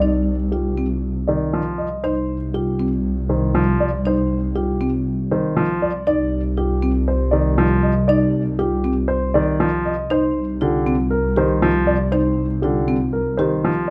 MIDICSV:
0, 0, Header, 1, 5, 480
1, 0, Start_track
1, 0, Key_signature, -3, "minor"
1, 0, Tempo, 504202
1, 23, Time_signature, 4, 2, 24, 8
1, 13234, End_track
2, 0, Start_track
2, 0, Title_t, "Grand piano"
2, 0, Program_c, 0, 0
2, 1, Note_on_c, 0, 74, 54
2, 327, Note_off_c, 0, 74, 0
2, 492, Note_on_c, 0, 67, 48
2, 811, Note_off_c, 0, 67, 0
2, 1214, Note_on_c, 0, 74, 53
2, 1532, Note_off_c, 0, 74, 0
2, 1695, Note_on_c, 0, 75, 47
2, 1938, Note_on_c, 0, 72, 61
2, 2012, Note_off_c, 0, 75, 0
2, 2253, Note_off_c, 0, 72, 0
2, 2419, Note_on_c, 0, 67, 50
2, 2734, Note_off_c, 0, 67, 0
2, 3136, Note_on_c, 0, 72, 49
2, 3452, Note_off_c, 0, 72, 0
2, 3621, Note_on_c, 0, 74, 56
2, 3871, Note_on_c, 0, 72, 60
2, 3934, Note_off_c, 0, 74, 0
2, 4178, Note_off_c, 0, 72, 0
2, 4336, Note_on_c, 0, 67, 55
2, 4652, Note_off_c, 0, 67, 0
2, 5059, Note_on_c, 0, 72, 56
2, 5374, Note_off_c, 0, 72, 0
2, 5543, Note_on_c, 0, 74, 59
2, 5766, Note_off_c, 0, 74, 0
2, 5780, Note_on_c, 0, 74, 70
2, 6094, Note_off_c, 0, 74, 0
2, 6260, Note_on_c, 0, 67, 56
2, 6574, Note_off_c, 0, 67, 0
2, 6738, Note_on_c, 0, 72, 60
2, 6962, Note_on_c, 0, 74, 60
2, 7053, Note_off_c, 0, 72, 0
2, 7287, Note_off_c, 0, 74, 0
2, 7452, Note_on_c, 0, 75, 60
2, 7691, Note_on_c, 0, 74, 68
2, 7771, Note_off_c, 0, 75, 0
2, 8011, Note_off_c, 0, 74, 0
2, 8176, Note_on_c, 0, 67, 64
2, 8493, Note_off_c, 0, 67, 0
2, 8643, Note_on_c, 0, 72, 69
2, 8894, Note_on_c, 0, 74, 68
2, 8968, Note_off_c, 0, 72, 0
2, 9212, Note_off_c, 0, 74, 0
2, 9381, Note_on_c, 0, 75, 61
2, 9625, Note_on_c, 0, 72, 68
2, 9694, Note_off_c, 0, 75, 0
2, 9936, Note_off_c, 0, 72, 0
2, 10108, Note_on_c, 0, 67, 59
2, 10417, Note_off_c, 0, 67, 0
2, 10571, Note_on_c, 0, 70, 68
2, 10831, Note_on_c, 0, 72, 67
2, 10891, Note_off_c, 0, 70, 0
2, 11138, Note_off_c, 0, 72, 0
2, 11301, Note_on_c, 0, 74, 64
2, 11537, Note_on_c, 0, 72, 64
2, 11614, Note_off_c, 0, 74, 0
2, 11853, Note_off_c, 0, 72, 0
2, 12016, Note_on_c, 0, 67, 55
2, 12332, Note_off_c, 0, 67, 0
2, 12498, Note_on_c, 0, 70, 60
2, 12732, Note_on_c, 0, 72, 57
2, 12813, Note_off_c, 0, 70, 0
2, 13051, Note_off_c, 0, 72, 0
2, 13234, End_track
3, 0, Start_track
3, 0, Title_t, "Marimba"
3, 0, Program_c, 1, 12
3, 17, Note_on_c, 1, 63, 60
3, 333, Note_off_c, 1, 63, 0
3, 499, Note_on_c, 1, 65, 47
3, 738, Note_on_c, 1, 60, 57
3, 814, Note_off_c, 1, 65, 0
3, 1053, Note_off_c, 1, 60, 0
3, 1942, Note_on_c, 1, 63, 57
3, 2255, Note_off_c, 1, 63, 0
3, 2422, Note_on_c, 1, 65, 52
3, 2660, Note_on_c, 1, 60, 61
3, 2735, Note_off_c, 1, 65, 0
3, 2974, Note_off_c, 1, 60, 0
3, 3860, Note_on_c, 1, 63, 62
3, 4174, Note_off_c, 1, 63, 0
3, 4338, Note_on_c, 1, 65, 49
3, 4577, Note_on_c, 1, 60, 68
3, 4653, Note_off_c, 1, 65, 0
3, 4893, Note_off_c, 1, 60, 0
3, 5779, Note_on_c, 1, 63, 66
3, 6093, Note_off_c, 1, 63, 0
3, 6259, Note_on_c, 1, 65, 48
3, 6497, Note_on_c, 1, 60, 73
3, 6573, Note_off_c, 1, 65, 0
3, 6813, Note_off_c, 1, 60, 0
3, 7703, Note_on_c, 1, 63, 69
3, 8015, Note_off_c, 1, 63, 0
3, 8179, Note_on_c, 1, 65, 60
3, 8417, Note_on_c, 1, 60, 67
3, 8494, Note_off_c, 1, 65, 0
3, 8733, Note_off_c, 1, 60, 0
3, 9619, Note_on_c, 1, 63, 73
3, 9934, Note_off_c, 1, 63, 0
3, 10101, Note_on_c, 1, 65, 60
3, 10343, Note_on_c, 1, 60, 74
3, 10414, Note_off_c, 1, 65, 0
3, 10655, Note_off_c, 1, 60, 0
3, 10819, Note_on_c, 1, 67, 60
3, 11134, Note_off_c, 1, 67, 0
3, 11541, Note_on_c, 1, 63, 75
3, 11854, Note_off_c, 1, 63, 0
3, 12024, Note_on_c, 1, 65, 53
3, 12262, Note_on_c, 1, 60, 70
3, 12336, Note_off_c, 1, 65, 0
3, 12574, Note_off_c, 1, 60, 0
3, 12746, Note_on_c, 1, 67, 64
3, 13056, Note_off_c, 1, 67, 0
3, 13234, End_track
4, 0, Start_track
4, 0, Title_t, "Grand piano"
4, 0, Program_c, 2, 0
4, 1223, Note_on_c, 2, 51, 47
4, 1460, Note_on_c, 2, 53, 57
4, 1535, Note_off_c, 2, 51, 0
4, 1774, Note_off_c, 2, 53, 0
4, 3137, Note_on_c, 2, 51, 49
4, 3376, Note_on_c, 2, 53, 72
4, 3453, Note_off_c, 2, 51, 0
4, 3693, Note_off_c, 2, 53, 0
4, 5062, Note_on_c, 2, 51, 52
4, 5298, Note_on_c, 2, 53, 74
4, 5375, Note_off_c, 2, 51, 0
4, 5613, Note_off_c, 2, 53, 0
4, 6975, Note_on_c, 2, 51, 54
4, 7215, Note_on_c, 2, 53, 80
4, 7292, Note_off_c, 2, 51, 0
4, 7532, Note_off_c, 2, 53, 0
4, 8902, Note_on_c, 2, 51, 59
4, 9139, Note_on_c, 2, 53, 74
4, 9214, Note_off_c, 2, 51, 0
4, 9454, Note_off_c, 2, 53, 0
4, 10105, Note_on_c, 2, 50, 63
4, 10416, Note_off_c, 2, 50, 0
4, 10825, Note_on_c, 2, 51, 60
4, 11065, Note_on_c, 2, 53, 80
4, 11136, Note_off_c, 2, 51, 0
4, 11376, Note_off_c, 2, 53, 0
4, 12033, Note_on_c, 2, 50, 53
4, 12338, Note_off_c, 2, 50, 0
4, 12747, Note_on_c, 2, 51, 54
4, 12990, Note_on_c, 2, 53, 70
4, 13056, Note_off_c, 2, 51, 0
4, 13234, Note_off_c, 2, 53, 0
4, 13234, End_track
5, 0, Start_track
5, 0, Title_t, "Double bass section"
5, 0, Program_c, 3, 48
5, 0, Note_on_c, 3, 36, 63
5, 1809, Note_off_c, 3, 36, 0
5, 1945, Note_on_c, 3, 36, 60
5, 5650, Note_off_c, 3, 36, 0
5, 5784, Note_on_c, 3, 36, 65
5, 9489, Note_off_c, 3, 36, 0
5, 9622, Note_on_c, 3, 36, 60
5, 13234, Note_off_c, 3, 36, 0
5, 13234, End_track
0, 0, End_of_file